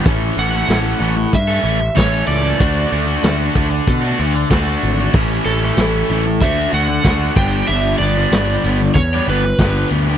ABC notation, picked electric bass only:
X:1
M:4/4
L:1/8
Q:1/4=94
K:Amix
V:1 name="Picked electric bass" clef=bass
A,,, A,,, A,,, A,,, G,, A,,, A,,, C,, | D,, D,, D,, D,, B,, D,, D,, ^G,,, | A,,, A,,, A,,, A,,, D,, D,, D,, G,,, | G,,, G,,, G,,, G,,, E,, G,,, G,,, D,, |]